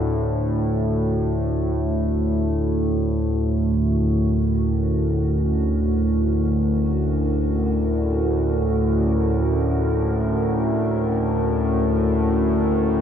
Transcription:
Already playing: synth drone D2 A2, analog synth pad A3 D4 F#4
2.81 analog synth pad D3
3.70 analog synth pad A#4
3.98 analog synth pad C#4

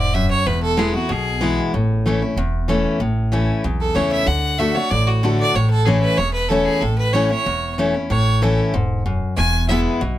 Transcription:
Already playing: upright bass E1, steel-string acoustic guitar G#2
0.00 fiddle D5
0.14 steel-string acoustic guitar F#2, fiddle E5
0.31 fiddle C#5
0.46 upright bass E1, steel-string acoustic guitar E2, fiddle B4
0.63 fiddle A4
0.77 steel-string acoustic guitar E3 G#3 B3 E4, fiddle G#4
0.93 steel-string acoustic guitar B3 E4, fiddle F#4
1.09 upright bass B1, steel-string acoustic guitar B2, fiddle G#4
1.41 steel-string acoustic guitar E3 G#3 B3 E4
1.74 upright bass A1, steel-string acoustic guitar A2
2.06 steel-string acoustic guitar E3 A3 C#4 E4
2.22 steel-string acoustic guitar C#4 E4
2.36 upright bass E1, steel-string acoustic guitar E2
2.68 steel-string acoustic guitar E3 A3 C#4 E4
3.00 upright bass A1, steel-string acoustic guitar A2
3.32 steel-string acoustic guitar E3 A3 C#4 E4
3.64 upright bass B1, steel-string acoustic guitar E2
3.80 fiddle A4
3.94 upright bass C#2, steel-string acoustic guitar E3 A3 C#4 E4, fiddle C#5
4.12 fiddle E5
4.26 upright bass D2, steel-string acoustic guitar D3, fiddle F#5
4.58 steel-string acoustic guitar D3 A3 D4 F#4, fiddle E5
4.75 steel-string acoustic guitar D4 F#4, fiddle C#5
4.90 upright bass A1, steel-string acoustic guitar A2, fiddle D5
5.07 fiddle F#4
5.23 steel-string acoustic guitar D3 A3 D4 F#4, fiddle A4
5.39 fiddle D5
5.54 upright bass A1, steel-string acoustic guitar A2, fiddle C#5
5.70 fiddle A4
5.85 steel-string acoustic guitar E3 A3 C#4 E4, fiddle G#4
6.01 fiddle B4
6.18 upright bass E1, steel-string acoustic guitar E2, fiddle C#5
6.33 fiddle B4
6.49 steel-string acoustic guitar E3 A3 C#4 E4, fiddle A4
6.65 fiddle G#4
6.81 upright bass A1, steel-string acoustic guitar A2, fiddle A4
6.98 fiddle B4
7.13 steel-string acoustic guitar E3 A3 C#4 E4, fiddle C#5
7.30 steel-string acoustic guitar C#4 E4, fiddle C#5
7.46 upright bass E1, steel-string acoustic guitar E2
7.78 steel-string acoustic guitar E3 A3 C#4 E4
7.94 steel-string acoustic guitar C#4 E4
8.10 upright bass A1, steel-string acoustic guitar A2, fiddle C#5
8.42 steel-string acoustic guitar E3 A3 C#4 E4, fiddle A4
8.74 upright bass E1, steel-string acoustic guitar G#2
9.06 steel-string acoustic guitar F#2
9.37 upright bass E1, steel-string acoustic guitar E2, fiddle G#5
9.68 steel-string acoustic guitar E3 G#3 B3 E4, fiddle E5
10.01 upright bass B1, steel-string acoustic guitar B2

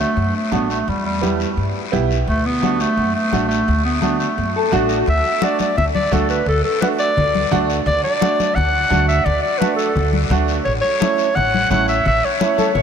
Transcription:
0.00 clarinet A3
0.17 upright bass F#2, high conga, long guiro
0.36 clarinet A3
0.51 upright bass A1, upright piano A3 D4 F#4, clarinet B3, high conga, short guiro
0.70 clarinet A3, short guiro
0.88 upright bass E2, clarinet G3, high conga, long guiro
1.06 clarinet G3
1.21 upright piano B3 E4 G4, high conga, short guiro
1.40 short guiro
1.57 upright bass G2, high conga, long guiro
1.92 upright bass B1, upright piano B3 E4 G4, high conga, short guiro
2.11 short guiro
2.28 upright bass D2, clarinet A3, high conga, long guiro
2.46 clarinet B3
2.62 upright piano A3 D4 F#4, high conga, short guiro
2.80 clarinet A3, short guiro
2.97 upright bass F#2, high conga, long guiro
3.15 clarinet A3
3.32 upright bass A1, upright piano A3 D4 F#4, high conga, short guiro
3.48 clarinet A3, short guiro
3.67 upright bass D2, high conga, long guiro
3.85 clarinet B3
4.01 upright piano A3 D4 F#4, clarinet B3, high conga, short guiro
4.19 clarinet A3, short guiro
4.38 upright bass F#2, high conga, long guiro
4.56 clean electric guitar A4
4.72 upright bass A1, upright piano A3 D4 F#4, clean electric guitar F#4, high conga, short guiro
4.89 short guiro
5.06 upright bass D2, clarinet E5, long guiro
5.25 high conga
5.42 upright piano A3 D4 F#4, clarinet D5, high conga, short guiro
5.59 clarinet D5, high conga, short guiro
5.76 upright bass D2, clarinet E5, high conga, low conga, long guiro
5.95 clarinet D5, high conga
6.11 upright bass D2, upright piano A3 D4 F#4, clarinet A4, high conga, low conga, short guiro
6.29 clarinet B4, short guiro
6.46 upright bass D2, clarinet A4, long guiro
6.64 clarinet A4, high conga
6.81 upright piano A3 D4 F#4, clarinet B4, high conga, short guiro
6.98 clarinet D5, short guiro
7.16 upright bass D2, high conga, low conga, long guiro
7.35 high conga
7.51 upright bass D2, upright piano A3 D4 F#4, high conga, low conga, short guiro
7.70 short guiro
7.86 upright bass D2, clarinet D5, low conga, long guiro
8.04 clarinet D5, high conga
8.21 upright piano A3 D4 F#4, high conga, short guiro
8.40 high conga, short guiro
8.55 upright bass D2, clarinet F#5, high conga, low conga, long guiro
8.90 upright bass D2, upright piano A3 D4 F#4, high conga, short guiro
9.08 clarinet E5, short guiro
9.25 upright bass D2, clarinet D5, low conga, long guiro
9.42 clarinet D5, high conga
9.58 upright piano A3 D4 F#4, clarinet B4, high conga, short guiro
9.76 clarinet A4, short guiro
9.96 upright bass D2, high conga, low conga, long guiro
10.13 high conga
10.30 upright bass D2, upright piano A3 D4 F#4, high conga, low conga, short guiro
10.48 short guiro
10.65 upright bass A1, clarinet C#5, long guiro
10.81 clarinet C#5, high conga
11.00 upright piano A3 C#4 E4, high conga, short guiro
11.18 short guiro
11.35 upright bass A1, clarinet F#5, high conga, low conga, long guiro
11.54 high conga
11.70 upright bass A1, upright piano A3 C#4 E4, clarinet F#5, high conga, low conga, short guiro
11.88 clarinet E5, short guiro
12.05 upright bass A1, clarinet E5, low conga, long guiro
12.24 clarinet C#5, high conga
12.40 upright piano A3 C#4 E4, high conga, short guiro
12.58 clean electric guitar A4, high conga, short guiro
12.75 upright bass A1, clean electric guitar C#5, high conga, low conga, long guiro

